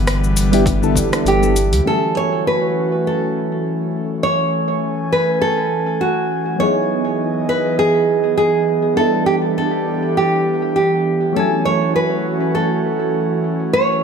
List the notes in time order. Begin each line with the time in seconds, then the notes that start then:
Already playing: G1 D3 E3 G3 B3
0.07 cross-stick, open hi-hat, cabasa
0.24 cabasa
0.37 open hi-hat, cabasa
0.51 G3 B3 D4 E4 G4, open hi-hat, cabasa
0.66 kick, open hi-hat, cabasa
0.81 G3 B3 D4 E4 A4, cabasa
0.96 kick, open hi-hat, cabasa
1.11 G3 B3 D4 E4 A4, cross-stick, open hi-hat, cabasa
1.25 G1 G4, open hi-hat, cabasa
1.41 G3 B3 D4 E4 A4, cabasa
1.56 open hi-hat, cabasa
1.71 D2, open hi-hat, cabasa
1.82 E3 F#3 A3 C#4 F#4
1.87 E4 A4 G#5
2.17 C#5
2.47 B4
3.07 A4
3.50 open hi-hat
3.93 open hi-hat
4.10 open hi-hat
4.22 C#5 G#5
4.82 open hi-hat
5.13 B4
5.42 A4
6.01 F#4
6.31 open hi-hat
6.47 open hi-hat
6.56 E3 F#3 B3 D#4 C#5
6.60 E4 G#4 D#5
7.07 open hi-hat
7.20 open hi-hat
7.49 B4
7.79 G#4
8.25 open hi-hat
8.37 G#4
8.68 open hi-hat
8.84 open hi-hat
8.95 G3 B3 D4 G4 A4
8.99 E4 A4
9.26 G4
9.44 open hi-hat
9.58 A4, open hi-hat
9.87 open hi-hat
10.03 open hi-hat
10.17 G4
10.62 open hi-hat
10.76 G4
11.06 open hi-hat
11.23 open hi-hat
11.32 F#3 A3 C#4 F#4 A4, open hi-hat
11.37 E4 G#5
11.65 C#5
11.94 B4, open hi-hat
12.25 open hi-hat
12.41 open hi-hat
12.54 A4, open hi-hat
13.00 open hi-hat
13.14 open hi-hat
13.44 open hi-hat
13.60 open hi-hat
13.73 E4 C#5